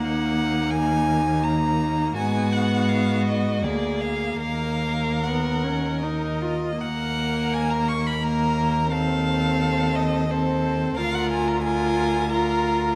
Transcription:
X:1
M:3/4
L:1/16
Q:1/4=85
K:Ebm
V:1 name="Violin"
g4 a4 b4 | a2 g2 f2 e2 =d2 f2 | f4 g4 e4 | g4 a b d' c' b4 |
f6 e2 =c4 | f g a b a4 b4 |]
V:2 name="Violin"
E12 | G8 A4 | B8- B2 z2 | B8 B4 |
=A8 A4 | B4 B4 B4 |]
V:3 name="Viola"
B,12 | C8 B,4- | B,4 C2 D2 E2 F2 | B,8 B,4 |
=C8 C4 | F4 F4 F4 |]
V:4 name="Cello" clef=bass
E,,12 | A,,8 =D,,4 | E,,8- E,,2 z2 | E,,12- |
E,,12 | =D,,12 |]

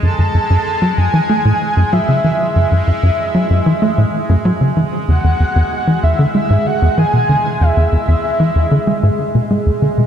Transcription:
X:1
M:4/4
L:1/16
Q:1/4=95
K:F#m
V:1 name="Soft synth lead"
a6 g6 e4 | e12- e2 z2 | f6 e2 e2 f2 g4 | e12 z4 |]
V:2 name="Synth texture" clef=bass
G,16- | G,16- | G,16- | G,16 |]
V:3 name="Analog synth bass" clef=bass
F,, F,, F,, F,, z F, F,, E, A, A,, z F,, F, C, E, z | F,, F,, F,, F,, z F, F,, E, A, A,, z F,, F, C, E, z | E,, E,, E,, E,, z E, E,, D, G, G,, z E,, E, B,, D, z | E,, E,, E,, E,, z E, E,, D, G, G,, z B,, G, E,, D, B,, |]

